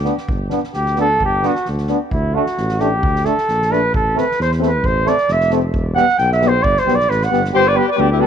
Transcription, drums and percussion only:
0.05 snare
0.18 snare
0.29 kick
0.50 snare
0.64 snare
0.73 snare
0.86 snare
0.96 snare
1.20 kick
1.43 snare
1.55 snare
1.65 snare
1.78 snare
1.87 snare
2.11 kick
2.46 snare
2.57 snare
2.69 snare
2.80 snare
3.03 kick
3.16 snare
3.24 snare
3.38 snare
3.48 snare
3.62 snare
3.73 snare
3.94 kick
4.18 snare
4.31 snare
4.41 snare
4.51 snare
4.62 snare
4.84 kick
5.06 snare
5.18 snare
5.28 snare
5.40 snare
5.50 snare
5.74 kick
5.97 snare
6.09 snare
6.18 snare
6.32 snare
6.41 snare
6.64 kick
6.77 snare
6.88 snare
7.00 snare
7.11 snare
7.21 snare
7.33 snare
7.44 snare

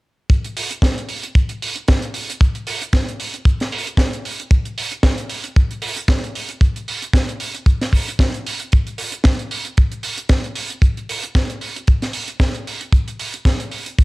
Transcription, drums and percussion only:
0.30 kick, closed hi-hat
0.44 closed hi-hat
0.57 open hi-hat
0.71 closed hi-hat
0.82 kick, snare, closed hi-hat
0.98 closed hi-hat
1.09 open hi-hat
1.23 closed hi-hat
1.35 kick, closed hi-hat
1.49 closed hi-hat
1.62 open hi-hat
1.76 closed hi-hat
1.88 kick, snare, closed hi-hat
2.02 closed hi-hat
2.14 open hi-hat
2.30 closed hi-hat
2.41 kick, closed hi-hat
2.55 closed hi-hat
2.67 open hi-hat
2.82 closed hi-hat
2.93 kick, snare, closed hi-hat
3.08 closed hi-hat
3.20 open hi-hat
3.34 closed hi-hat
3.45 kick, closed hi-hat
3.60 snare, closed hi-hat
3.72 open hi-hat
3.87 closed hi-hat
3.97 kick, snare, closed hi-hat
4.13 closed hi-hat
4.25 open hi-hat
4.40 closed hi-hat
4.51 kick, closed hi-hat
4.65 closed hi-hat
4.78 open hi-hat
4.92 closed hi-hat
5.03 kick, snare, closed hi-hat
5.18 closed hi-hat
5.29 open hi-hat
5.44 closed hi-hat
5.56 kick, closed hi-hat
5.71 closed hi-hat
5.82 open hi-hat
5.97 closed hi-hat
6.08 kick, snare, closed hi-hat
6.24 closed hi-hat
6.35 open hi-hat
6.49 closed hi-hat
6.61 kick, closed hi-hat
6.76 closed hi-hat
6.88 open hi-hat
7.02 closed hi-hat
7.13 kick, snare, closed hi-hat
7.29 closed hi-hat
7.40 open hi-hat
7.55 closed hi-hat
7.66 kick, closed hi-hat
7.81 snare, closed hi-hat
7.93 kick, open hi-hat
8.08 closed hi-hat
8.19 kick, snare, closed hi-hat
8.34 closed hi-hat
8.47 open hi-hat
8.60 closed hi-hat
8.72 kick, closed hi-hat
8.87 closed hi-hat
8.98 open hi-hat
9.12 closed hi-hat
9.24 kick, snare, closed hi-hat
9.39 closed hi-hat
9.51 open hi-hat
9.65 closed hi-hat
9.77 kick, closed hi-hat
9.92 closed hi-hat
10.03 open hi-hat
10.18 closed hi-hat
10.29 kick, snare, closed hi-hat
10.44 closed hi-hat
10.55 open hi-hat
10.70 closed hi-hat
10.82 kick, closed hi-hat
10.97 closed hi-hat
11.09 open hi-hat
11.23 closed hi-hat
11.35 kick, snare, closed hi-hat
11.50 closed hi-hat
11.61 open hi-hat
11.76 closed hi-hat
11.87 kick, closed hi-hat
12.02 snare, closed hi-hat
12.13 open hi-hat
12.28 closed hi-hat
12.40 kick, snare, closed hi-hat
12.54 closed hi-hat
12.67 open hi-hat
12.81 closed hi-hat
12.92 kick, closed hi-hat
13.08 closed hi-hat
13.19 open hi-hat
13.34 closed hi-hat
13.45 kick, snare, closed hi-hat
13.60 closed hi-hat
13.71 open hi-hat
13.86 closed hi-hat
13.99 kick, closed hi-hat

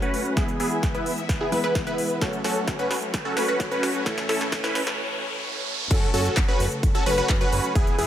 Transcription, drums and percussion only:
0.02 closed hi-hat
0.14 open hi-hat
0.25 closed hi-hat
0.37 kick, snare, closed hi-hat
0.48 closed hi-hat
0.60 open hi-hat
0.71 closed hi-hat
0.83 kick, snare, closed hi-hat
0.95 closed hi-hat
1.06 open hi-hat
1.18 closed hi-hat
1.29 kick, snare, closed hi-hat
1.52 open hi-hat
1.64 closed hi-hat
1.75 kick, snare, closed hi-hat
1.87 closed hi-hat
1.98 open hi-hat
2.10 closed hi-hat
2.21 kick, snare, closed hi-hat
2.33 closed hi-hat
2.44 snare, open hi-hat
2.56 closed hi-hat
2.67 kick, snare, closed hi-hat
2.79 closed hi-hat
2.91 snare, open hi-hat
3.02 closed hi-hat
3.14 kick, snare, closed hi-hat
3.37 snare, open hi-hat
3.48 closed hi-hat
3.60 kick, snare, closed hi-hat
3.72 closed hi-hat
3.83 snare, open hi-hat
3.95 closed hi-hat
4.06 kick, snare, closed hi-hat
4.18 snare, closed hi-hat
4.29 snare, open hi-hat
4.41 snare, closed hi-hat
4.52 kick, snare, closed hi-hat
4.64 snare, closed hi-hat
4.75 snare, open hi-hat
4.87 snare, closed hi-hat
5.91 kick, closed hi-hat, crash, ride
6.14 open hi-hat
6.25 closed hi-hat
6.37 kick, clap, closed hi-hat, ride
6.60 open hi-hat
6.72 closed hi-hat
6.83 kick, closed hi-hat, ride
6.95 closed hi-hat
7.06 open hi-hat
7.18 closed hi-hat
7.29 kick, clap, closed hi-hat, ride
7.41 closed hi-hat
7.52 open hi-hat
7.64 closed hi-hat
7.75 kick, closed hi-hat, ride
7.87 closed hi-hat
7.99 open hi-hat

